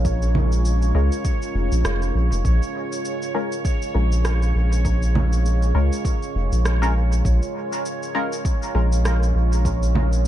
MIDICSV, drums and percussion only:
0, 0, Header, 1, 2, 480
1, 0, Start_track
1, 0, Key_signature, -5, "minor"
1, 0, Tempo, 600000
1, 40, Time_signature, 4, 2, 24, 8
1, 8222, End_track
2, 0, Start_track
2, 0, Title_t, "Drums"
2, 39, Note_on_c, 9, 36, 113
2, 41, Note_on_c, 9, 82, 49
2, 119, Note_off_c, 9, 36, 0
2, 121, Note_off_c, 9, 82, 0
2, 178, Note_on_c, 9, 82, 28
2, 258, Note_off_c, 9, 82, 0
2, 280, Note_on_c, 9, 64, 55
2, 360, Note_off_c, 9, 64, 0
2, 417, Note_on_c, 9, 82, 41
2, 497, Note_off_c, 9, 82, 0
2, 521, Note_on_c, 9, 82, 49
2, 601, Note_off_c, 9, 82, 0
2, 658, Note_on_c, 9, 82, 29
2, 738, Note_off_c, 9, 82, 0
2, 898, Note_on_c, 9, 82, 42
2, 978, Note_off_c, 9, 82, 0
2, 998, Note_on_c, 9, 36, 105
2, 998, Note_on_c, 9, 82, 51
2, 1078, Note_off_c, 9, 36, 0
2, 1078, Note_off_c, 9, 82, 0
2, 1137, Note_on_c, 9, 82, 29
2, 1217, Note_off_c, 9, 82, 0
2, 1377, Note_on_c, 9, 82, 41
2, 1457, Note_off_c, 9, 82, 0
2, 1480, Note_on_c, 9, 37, 96
2, 1480, Note_on_c, 9, 82, 53
2, 1560, Note_off_c, 9, 37, 0
2, 1560, Note_off_c, 9, 82, 0
2, 1618, Note_on_c, 9, 82, 29
2, 1698, Note_off_c, 9, 82, 0
2, 1858, Note_on_c, 9, 82, 40
2, 1938, Note_off_c, 9, 82, 0
2, 1959, Note_on_c, 9, 36, 105
2, 1962, Note_on_c, 9, 82, 47
2, 2039, Note_off_c, 9, 36, 0
2, 2042, Note_off_c, 9, 82, 0
2, 2100, Note_on_c, 9, 82, 27
2, 2180, Note_off_c, 9, 82, 0
2, 2339, Note_on_c, 9, 82, 40
2, 2419, Note_off_c, 9, 82, 0
2, 2440, Note_on_c, 9, 82, 50
2, 2520, Note_off_c, 9, 82, 0
2, 2578, Note_on_c, 9, 82, 28
2, 2658, Note_off_c, 9, 82, 0
2, 2818, Note_on_c, 9, 82, 40
2, 2898, Note_off_c, 9, 82, 0
2, 2919, Note_on_c, 9, 36, 105
2, 2920, Note_on_c, 9, 82, 51
2, 2999, Note_off_c, 9, 36, 0
2, 3000, Note_off_c, 9, 82, 0
2, 3057, Note_on_c, 9, 82, 29
2, 3137, Note_off_c, 9, 82, 0
2, 3297, Note_on_c, 9, 82, 41
2, 3377, Note_off_c, 9, 82, 0
2, 3399, Note_on_c, 9, 37, 92
2, 3399, Note_on_c, 9, 82, 49
2, 3479, Note_off_c, 9, 37, 0
2, 3479, Note_off_c, 9, 82, 0
2, 3539, Note_on_c, 9, 82, 29
2, 3619, Note_off_c, 9, 82, 0
2, 3780, Note_on_c, 9, 82, 39
2, 3860, Note_off_c, 9, 82, 0
2, 3879, Note_on_c, 9, 36, 105
2, 3882, Note_on_c, 9, 82, 51
2, 3959, Note_off_c, 9, 36, 0
2, 3962, Note_off_c, 9, 82, 0
2, 4020, Note_on_c, 9, 82, 28
2, 4100, Note_off_c, 9, 82, 0
2, 4123, Note_on_c, 9, 64, 60
2, 4203, Note_off_c, 9, 64, 0
2, 4261, Note_on_c, 9, 82, 40
2, 4341, Note_off_c, 9, 82, 0
2, 4366, Note_on_c, 9, 82, 46
2, 4446, Note_off_c, 9, 82, 0
2, 4500, Note_on_c, 9, 82, 29
2, 4580, Note_off_c, 9, 82, 0
2, 4741, Note_on_c, 9, 82, 40
2, 4821, Note_off_c, 9, 82, 0
2, 4839, Note_on_c, 9, 36, 103
2, 4842, Note_on_c, 9, 82, 48
2, 4919, Note_off_c, 9, 36, 0
2, 4922, Note_off_c, 9, 82, 0
2, 4981, Note_on_c, 9, 82, 29
2, 5061, Note_off_c, 9, 82, 0
2, 5220, Note_on_c, 9, 82, 41
2, 5300, Note_off_c, 9, 82, 0
2, 5324, Note_on_c, 9, 37, 90
2, 5324, Note_on_c, 9, 82, 49
2, 5404, Note_off_c, 9, 37, 0
2, 5404, Note_off_c, 9, 82, 0
2, 5461, Note_on_c, 9, 82, 29
2, 5541, Note_off_c, 9, 82, 0
2, 5699, Note_on_c, 9, 82, 39
2, 5779, Note_off_c, 9, 82, 0
2, 5800, Note_on_c, 9, 36, 103
2, 5804, Note_on_c, 9, 82, 51
2, 5880, Note_off_c, 9, 36, 0
2, 5884, Note_off_c, 9, 82, 0
2, 5940, Note_on_c, 9, 82, 29
2, 6020, Note_off_c, 9, 82, 0
2, 6181, Note_on_c, 9, 82, 41
2, 6261, Note_off_c, 9, 82, 0
2, 6283, Note_on_c, 9, 82, 49
2, 6363, Note_off_c, 9, 82, 0
2, 6422, Note_on_c, 9, 82, 29
2, 6502, Note_off_c, 9, 82, 0
2, 6660, Note_on_c, 9, 82, 42
2, 6740, Note_off_c, 9, 82, 0
2, 6759, Note_on_c, 9, 36, 100
2, 6762, Note_on_c, 9, 82, 53
2, 6839, Note_off_c, 9, 36, 0
2, 6842, Note_off_c, 9, 82, 0
2, 6900, Note_on_c, 9, 82, 29
2, 6980, Note_off_c, 9, 82, 0
2, 7139, Note_on_c, 9, 82, 41
2, 7219, Note_off_c, 9, 82, 0
2, 7242, Note_on_c, 9, 37, 89
2, 7242, Note_on_c, 9, 82, 51
2, 7322, Note_off_c, 9, 37, 0
2, 7322, Note_off_c, 9, 82, 0
2, 7383, Note_on_c, 9, 82, 29
2, 7463, Note_off_c, 9, 82, 0
2, 7621, Note_on_c, 9, 82, 40
2, 7701, Note_off_c, 9, 82, 0
2, 7720, Note_on_c, 9, 36, 104
2, 7724, Note_on_c, 9, 82, 52
2, 7800, Note_off_c, 9, 36, 0
2, 7804, Note_off_c, 9, 82, 0
2, 7862, Note_on_c, 9, 82, 30
2, 7942, Note_off_c, 9, 82, 0
2, 7963, Note_on_c, 9, 64, 64
2, 8043, Note_off_c, 9, 64, 0
2, 8102, Note_on_c, 9, 82, 43
2, 8182, Note_off_c, 9, 82, 0
2, 8222, End_track
0, 0, End_of_file